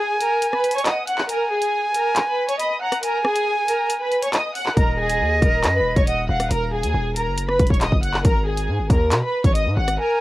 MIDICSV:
0, 0, Header, 1, 5, 480
1, 0, Start_track
1, 0, Tempo, 434783
1, 1424, Time_signature, 4, 2, 24, 8
1, 11267, End_track
2, 0, Start_track
2, 0, Title_t, "Flute"
2, 0, Program_c, 0, 73
2, 0, Note_on_c, 0, 80, 120
2, 899, Note_off_c, 0, 80, 0
2, 944, Note_on_c, 0, 78, 97
2, 1172, Note_off_c, 0, 78, 0
2, 1184, Note_on_c, 0, 78, 81
2, 1412, Note_off_c, 0, 78, 0
2, 1426, Note_on_c, 0, 80, 124
2, 2821, Note_off_c, 0, 80, 0
2, 2864, Note_on_c, 0, 83, 82
2, 3092, Note_off_c, 0, 83, 0
2, 3105, Note_on_c, 0, 82, 81
2, 3333, Note_off_c, 0, 82, 0
2, 3343, Note_on_c, 0, 80, 125
2, 4740, Note_off_c, 0, 80, 0
2, 5264, Note_on_c, 0, 75, 118
2, 6660, Note_off_c, 0, 75, 0
2, 6703, Note_on_c, 0, 78, 97
2, 6932, Note_off_c, 0, 78, 0
2, 6947, Note_on_c, 0, 77, 88
2, 7174, Note_off_c, 0, 77, 0
2, 11023, Note_on_c, 0, 80, 124
2, 11267, Note_off_c, 0, 80, 0
2, 11267, End_track
3, 0, Start_track
3, 0, Title_t, "Violin section"
3, 0, Program_c, 1, 48
3, 0, Note_on_c, 1, 68, 94
3, 0, Note_on_c, 1, 80, 71
3, 197, Note_off_c, 1, 68, 0
3, 201, Note_off_c, 1, 80, 0
3, 224, Note_on_c, 1, 70, 72
3, 233, Note_on_c, 1, 82, 59
3, 563, Note_off_c, 1, 70, 0
3, 568, Note_off_c, 1, 82, 0
3, 584, Note_on_c, 1, 71, 88
3, 593, Note_on_c, 1, 83, 67
3, 788, Note_off_c, 1, 71, 0
3, 793, Note_off_c, 1, 83, 0
3, 825, Note_on_c, 1, 73, 91
3, 834, Note_on_c, 1, 85, 67
3, 927, Note_off_c, 1, 73, 0
3, 932, Note_off_c, 1, 85, 0
3, 949, Note_on_c, 1, 75, 79
3, 958, Note_on_c, 1, 87, 59
3, 1151, Note_off_c, 1, 75, 0
3, 1156, Note_off_c, 1, 87, 0
3, 1180, Note_on_c, 1, 78, 68
3, 1189, Note_on_c, 1, 90, 63
3, 1386, Note_off_c, 1, 78, 0
3, 1391, Note_off_c, 1, 90, 0
3, 1421, Note_on_c, 1, 70, 107
3, 1430, Note_on_c, 1, 82, 76
3, 1626, Note_off_c, 1, 70, 0
3, 1632, Note_off_c, 1, 82, 0
3, 1663, Note_on_c, 1, 68, 88
3, 1672, Note_on_c, 1, 80, 66
3, 2115, Note_off_c, 1, 68, 0
3, 2120, Note_off_c, 1, 80, 0
3, 2149, Note_on_c, 1, 70, 75
3, 2158, Note_on_c, 1, 82, 56
3, 2486, Note_off_c, 1, 70, 0
3, 2490, Note_off_c, 1, 82, 0
3, 2505, Note_on_c, 1, 71, 82
3, 2513, Note_on_c, 1, 83, 66
3, 2709, Note_off_c, 1, 71, 0
3, 2713, Note_off_c, 1, 83, 0
3, 2743, Note_on_c, 1, 73, 87
3, 2752, Note_on_c, 1, 85, 65
3, 2846, Note_off_c, 1, 73, 0
3, 2851, Note_off_c, 1, 85, 0
3, 2859, Note_on_c, 1, 75, 80
3, 2868, Note_on_c, 1, 87, 63
3, 3065, Note_off_c, 1, 75, 0
3, 3070, Note_off_c, 1, 87, 0
3, 3103, Note_on_c, 1, 78, 76
3, 3112, Note_on_c, 1, 90, 57
3, 3308, Note_off_c, 1, 78, 0
3, 3313, Note_off_c, 1, 90, 0
3, 3346, Note_on_c, 1, 70, 99
3, 3355, Note_on_c, 1, 82, 71
3, 3549, Note_off_c, 1, 70, 0
3, 3555, Note_off_c, 1, 82, 0
3, 3588, Note_on_c, 1, 68, 97
3, 3597, Note_on_c, 1, 80, 66
3, 4038, Note_off_c, 1, 68, 0
3, 4042, Note_off_c, 1, 80, 0
3, 4059, Note_on_c, 1, 70, 76
3, 4068, Note_on_c, 1, 82, 56
3, 4400, Note_off_c, 1, 70, 0
3, 4405, Note_off_c, 1, 82, 0
3, 4424, Note_on_c, 1, 71, 81
3, 4432, Note_on_c, 1, 83, 62
3, 4628, Note_off_c, 1, 71, 0
3, 4633, Note_off_c, 1, 83, 0
3, 4665, Note_on_c, 1, 73, 81
3, 4673, Note_on_c, 1, 85, 64
3, 4766, Note_off_c, 1, 73, 0
3, 4771, Note_off_c, 1, 85, 0
3, 4785, Note_on_c, 1, 75, 77
3, 4794, Note_on_c, 1, 87, 66
3, 4989, Note_off_c, 1, 75, 0
3, 4994, Note_off_c, 1, 87, 0
3, 5021, Note_on_c, 1, 78, 72
3, 5030, Note_on_c, 1, 90, 62
3, 5226, Note_off_c, 1, 78, 0
3, 5232, Note_off_c, 1, 90, 0
3, 5255, Note_on_c, 1, 70, 92
3, 5263, Note_on_c, 1, 82, 73
3, 5463, Note_off_c, 1, 70, 0
3, 5468, Note_off_c, 1, 82, 0
3, 5503, Note_on_c, 1, 68, 95
3, 5512, Note_on_c, 1, 80, 70
3, 5955, Note_off_c, 1, 68, 0
3, 5960, Note_off_c, 1, 80, 0
3, 5990, Note_on_c, 1, 70, 79
3, 5999, Note_on_c, 1, 82, 65
3, 6326, Note_off_c, 1, 70, 0
3, 6331, Note_off_c, 1, 82, 0
3, 6346, Note_on_c, 1, 71, 80
3, 6355, Note_on_c, 1, 83, 68
3, 6549, Note_off_c, 1, 71, 0
3, 6554, Note_off_c, 1, 83, 0
3, 6581, Note_on_c, 1, 73, 87
3, 6590, Note_on_c, 1, 85, 62
3, 6685, Note_off_c, 1, 73, 0
3, 6690, Note_off_c, 1, 85, 0
3, 6706, Note_on_c, 1, 75, 76
3, 6714, Note_on_c, 1, 87, 63
3, 6909, Note_off_c, 1, 75, 0
3, 6914, Note_off_c, 1, 87, 0
3, 6943, Note_on_c, 1, 78, 75
3, 6952, Note_on_c, 1, 90, 58
3, 7148, Note_off_c, 1, 78, 0
3, 7153, Note_off_c, 1, 90, 0
3, 7186, Note_on_c, 1, 70, 97
3, 7195, Note_on_c, 1, 82, 77
3, 7389, Note_off_c, 1, 70, 0
3, 7394, Note_off_c, 1, 82, 0
3, 7425, Note_on_c, 1, 68, 92
3, 7434, Note_on_c, 1, 80, 74
3, 7876, Note_off_c, 1, 68, 0
3, 7881, Note_off_c, 1, 80, 0
3, 7906, Note_on_c, 1, 70, 71
3, 7914, Note_on_c, 1, 82, 62
3, 8243, Note_off_c, 1, 70, 0
3, 8248, Note_off_c, 1, 82, 0
3, 8265, Note_on_c, 1, 71, 92
3, 8274, Note_on_c, 1, 83, 69
3, 8469, Note_off_c, 1, 71, 0
3, 8474, Note_off_c, 1, 83, 0
3, 8507, Note_on_c, 1, 73, 90
3, 8516, Note_on_c, 1, 85, 68
3, 8608, Note_off_c, 1, 73, 0
3, 8613, Note_off_c, 1, 85, 0
3, 8630, Note_on_c, 1, 75, 78
3, 8638, Note_on_c, 1, 87, 60
3, 8831, Note_off_c, 1, 75, 0
3, 8836, Note_off_c, 1, 87, 0
3, 8861, Note_on_c, 1, 78, 71
3, 8870, Note_on_c, 1, 90, 62
3, 9067, Note_off_c, 1, 78, 0
3, 9072, Note_off_c, 1, 90, 0
3, 9103, Note_on_c, 1, 70, 107
3, 9111, Note_on_c, 1, 82, 76
3, 9307, Note_off_c, 1, 70, 0
3, 9312, Note_off_c, 1, 82, 0
3, 9344, Note_on_c, 1, 68, 84
3, 9353, Note_on_c, 1, 80, 66
3, 9796, Note_off_c, 1, 68, 0
3, 9800, Note_off_c, 1, 80, 0
3, 9831, Note_on_c, 1, 70, 74
3, 9841, Note_on_c, 1, 82, 58
3, 10167, Note_off_c, 1, 70, 0
3, 10172, Note_off_c, 1, 82, 0
3, 10187, Note_on_c, 1, 71, 87
3, 10196, Note_on_c, 1, 83, 68
3, 10390, Note_off_c, 1, 71, 0
3, 10395, Note_off_c, 1, 83, 0
3, 10425, Note_on_c, 1, 73, 90
3, 10434, Note_on_c, 1, 85, 66
3, 10527, Note_off_c, 1, 73, 0
3, 10532, Note_off_c, 1, 85, 0
3, 10541, Note_on_c, 1, 75, 80
3, 10550, Note_on_c, 1, 87, 62
3, 10746, Note_off_c, 1, 75, 0
3, 10752, Note_off_c, 1, 87, 0
3, 10785, Note_on_c, 1, 78, 77
3, 10793, Note_on_c, 1, 90, 55
3, 10988, Note_off_c, 1, 78, 0
3, 10993, Note_off_c, 1, 90, 0
3, 11028, Note_on_c, 1, 70, 99
3, 11037, Note_on_c, 1, 82, 72
3, 11230, Note_off_c, 1, 70, 0
3, 11235, Note_off_c, 1, 82, 0
3, 11267, End_track
4, 0, Start_track
4, 0, Title_t, "808-style bass"
4, 0, Program_c, 2, 38
4, 5264, Note_on_c, 2, 27, 105
4, 5744, Note_on_c, 2, 39, 96
4, 5760, Note_off_c, 2, 27, 0
4, 5972, Note_off_c, 2, 39, 0
4, 5984, Note_on_c, 2, 27, 105
4, 6224, Note_on_c, 2, 42, 101
4, 6241, Note_off_c, 2, 27, 0
4, 6404, Note_on_c, 2, 27, 96
4, 6421, Note_off_c, 2, 42, 0
4, 6575, Note_off_c, 2, 27, 0
4, 6584, Note_on_c, 2, 27, 105
4, 6930, Note_off_c, 2, 27, 0
4, 6943, Note_on_c, 2, 27, 104
4, 7174, Note_off_c, 2, 27, 0
4, 7183, Note_on_c, 2, 27, 109
4, 7543, Note_on_c, 2, 39, 98
4, 7560, Note_off_c, 2, 27, 0
4, 7658, Note_off_c, 2, 39, 0
4, 7663, Note_on_c, 2, 27, 106
4, 8024, Note_on_c, 2, 30, 103
4, 8041, Note_off_c, 2, 27, 0
4, 8366, Note_off_c, 2, 30, 0
4, 8385, Note_on_c, 2, 27, 107
4, 8498, Note_off_c, 2, 27, 0
4, 8504, Note_on_c, 2, 27, 104
4, 8735, Note_off_c, 2, 27, 0
4, 8744, Note_on_c, 2, 30, 106
4, 9090, Note_off_c, 2, 30, 0
4, 9105, Note_on_c, 2, 32, 109
4, 9584, Note_on_c, 2, 44, 97
4, 9601, Note_off_c, 2, 32, 0
4, 9704, Note_on_c, 2, 32, 102
4, 9720, Note_off_c, 2, 44, 0
4, 9818, Note_off_c, 2, 32, 0
4, 9825, Note_on_c, 2, 39, 106
4, 10064, Note_on_c, 2, 47, 103
4, 10080, Note_off_c, 2, 39, 0
4, 10178, Note_off_c, 2, 47, 0
4, 10425, Note_on_c, 2, 32, 109
4, 10665, Note_on_c, 2, 44, 104
4, 10681, Note_off_c, 2, 32, 0
4, 10779, Note_off_c, 2, 44, 0
4, 10784, Note_on_c, 2, 32, 103
4, 11015, Note_off_c, 2, 32, 0
4, 11267, End_track
5, 0, Start_track
5, 0, Title_t, "Drums"
5, 227, Note_on_c, 9, 42, 76
5, 337, Note_off_c, 9, 42, 0
5, 464, Note_on_c, 9, 42, 91
5, 574, Note_off_c, 9, 42, 0
5, 586, Note_on_c, 9, 37, 65
5, 696, Note_off_c, 9, 37, 0
5, 705, Note_on_c, 9, 42, 63
5, 785, Note_off_c, 9, 42, 0
5, 785, Note_on_c, 9, 42, 61
5, 865, Note_off_c, 9, 42, 0
5, 865, Note_on_c, 9, 42, 58
5, 945, Note_off_c, 9, 42, 0
5, 945, Note_on_c, 9, 42, 75
5, 946, Note_on_c, 9, 39, 112
5, 1056, Note_off_c, 9, 39, 0
5, 1056, Note_off_c, 9, 42, 0
5, 1186, Note_on_c, 9, 42, 81
5, 1296, Note_off_c, 9, 42, 0
5, 1305, Note_on_c, 9, 39, 68
5, 1415, Note_off_c, 9, 39, 0
5, 1425, Note_on_c, 9, 42, 83
5, 1535, Note_off_c, 9, 42, 0
5, 1785, Note_on_c, 9, 42, 81
5, 1895, Note_off_c, 9, 42, 0
5, 2146, Note_on_c, 9, 42, 74
5, 2257, Note_off_c, 9, 42, 0
5, 2384, Note_on_c, 9, 42, 90
5, 2385, Note_on_c, 9, 39, 115
5, 2495, Note_off_c, 9, 42, 0
5, 2496, Note_off_c, 9, 39, 0
5, 2745, Note_on_c, 9, 42, 75
5, 2856, Note_off_c, 9, 42, 0
5, 2866, Note_on_c, 9, 42, 75
5, 2976, Note_off_c, 9, 42, 0
5, 3225, Note_on_c, 9, 37, 66
5, 3225, Note_on_c, 9, 42, 81
5, 3335, Note_off_c, 9, 37, 0
5, 3336, Note_off_c, 9, 42, 0
5, 3345, Note_on_c, 9, 42, 87
5, 3455, Note_off_c, 9, 42, 0
5, 3585, Note_on_c, 9, 37, 100
5, 3695, Note_off_c, 9, 37, 0
5, 3705, Note_on_c, 9, 42, 84
5, 3816, Note_off_c, 9, 42, 0
5, 4066, Note_on_c, 9, 42, 77
5, 4177, Note_off_c, 9, 42, 0
5, 4303, Note_on_c, 9, 42, 91
5, 4414, Note_off_c, 9, 42, 0
5, 4545, Note_on_c, 9, 42, 45
5, 4655, Note_off_c, 9, 42, 0
5, 4664, Note_on_c, 9, 42, 73
5, 4775, Note_off_c, 9, 42, 0
5, 4785, Note_on_c, 9, 39, 107
5, 4785, Note_on_c, 9, 42, 76
5, 4895, Note_off_c, 9, 39, 0
5, 4895, Note_off_c, 9, 42, 0
5, 5025, Note_on_c, 9, 46, 58
5, 5136, Note_off_c, 9, 46, 0
5, 5145, Note_on_c, 9, 39, 67
5, 5255, Note_off_c, 9, 39, 0
5, 5265, Note_on_c, 9, 36, 113
5, 5265, Note_on_c, 9, 42, 83
5, 5375, Note_off_c, 9, 36, 0
5, 5375, Note_off_c, 9, 42, 0
5, 5625, Note_on_c, 9, 42, 85
5, 5735, Note_off_c, 9, 42, 0
5, 5984, Note_on_c, 9, 36, 92
5, 5986, Note_on_c, 9, 42, 76
5, 6094, Note_off_c, 9, 36, 0
5, 6096, Note_off_c, 9, 42, 0
5, 6223, Note_on_c, 9, 42, 93
5, 6224, Note_on_c, 9, 39, 121
5, 6334, Note_off_c, 9, 42, 0
5, 6335, Note_off_c, 9, 39, 0
5, 6584, Note_on_c, 9, 36, 94
5, 6584, Note_on_c, 9, 42, 74
5, 6695, Note_off_c, 9, 36, 0
5, 6695, Note_off_c, 9, 42, 0
5, 6704, Note_on_c, 9, 42, 73
5, 6815, Note_off_c, 9, 42, 0
5, 7064, Note_on_c, 9, 37, 64
5, 7064, Note_on_c, 9, 42, 80
5, 7174, Note_off_c, 9, 37, 0
5, 7175, Note_off_c, 9, 42, 0
5, 7184, Note_on_c, 9, 42, 87
5, 7294, Note_off_c, 9, 42, 0
5, 7544, Note_on_c, 9, 42, 82
5, 7654, Note_off_c, 9, 42, 0
5, 7905, Note_on_c, 9, 42, 77
5, 8016, Note_off_c, 9, 42, 0
5, 8143, Note_on_c, 9, 42, 89
5, 8254, Note_off_c, 9, 42, 0
5, 8265, Note_on_c, 9, 37, 65
5, 8375, Note_off_c, 9, 37, 0
5, 8384, Note_on_c, 9, 42, 61
5, 8385, Note_on_c, 9, 36, 99
5, 8465, Note_off_c, 9, 42, 0
5, 8465, Note_on_c, 9, 42, 60
5, 8495, Note_off_c, 9, 36, 0
5, 8504, Note_on_c, 9, 36, 91
5, 8544, Note_off_c, 9, 42, 0
5, 8544, Note_on_c, 9, 42, 57
5, 8615, Note_off_c, 9, 36, 0
5, 8624, Note_off_c, 9, 42, 0
5, 8624, Note_on_c, 9, 42, 76
5, 8625, Note_on_c, 9, 39, 110
5, 8735, Note_off_c, 9, 39, 0
5, 8735, Note_off_c, 9, 42, 0
5, 8744, Note_on_c, 9, 36, 88
5, 8855, Note_off_c, 9, 36, 0
5, 8865, Note_on_c, 9, 42, 79
5, 8976, Note_off_c, 9, 42, 0
5, 8984, Note_on_c, 9, 39, 64
5, 9095, Note_off_c, 9, 39, 0
5, 9104, Note_on_c, 9, 42, 86
5, 9105, Note_on_c, 9, 36, 117
5, 9215, Note_off_c, 9, 36, 0
5, 9215, Note_off_c, 9, 42, 0
5, 9465, Note_on_c, 9, 42, 82
5, 9575, Note_off_c, 9, 42, 0
5, 9825, Note_on_c, 9, 36, 93
5, 9826, Note_on_c, 9, 42, 74
5, 9935, Note_off_c, 9, 36, 0
5, 9937, Note_off_c, 9, 42, 0
5, 10064, Note_on_c, 9, 42, 95
5, 10065, Note_on_c, 9, 39, 116
5, 10174, Note_off_c, 9, 42, 0
5, 10175, Note_off_c, 9, 39, 0
5, 10425, Note_on_c, 9, 36, 92
5, 10425, Note_on_c, 9, 42, 76
5, 10535, Note_off_c, 9, 36, 0
5, 10535, Note_off_c, 9, 42, 0
5, 10545, Note_on_c, 9, 42, 75
5, 10655, Note_off_c, 9, 42, 0
5, 10905, Note_on_c, 9, 37, 65
5, 10905, Note_on_c, 9, 42, 80
5, 11015, Note_off_c, 9, 37, 0
5, 11016, Note_off_c, 9, 42, 0
5, 11267, End_track
0, 0, End_of_file